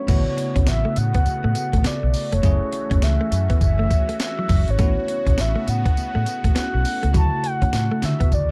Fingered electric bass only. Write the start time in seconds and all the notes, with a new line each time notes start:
0.09 A1
0.56 B1
0.68 A1
0.97 A2
1.26 muted fingered electric bass stroke
1.45 A2
1.73 A1
1.85 muted fingered electric bass stroke
2.03 B1
2.33 F1
2.44 F#1
2.91 F#1
3.02 C#2
3.32 F#2
3.61 F#1
4.50 F#1
4.69 G#1
4.79 A1
5.27 B1
5.39 A1
5.68 A2
5.98 muted fingered electric bass stroke
6.16 A2
6.44 A1
6.56 muted fingered electric bass stroke
6.75 B1
7.04 C#2
7.15 D2
7.62 D2
7.74 A2
8.03 D3
8.32 D2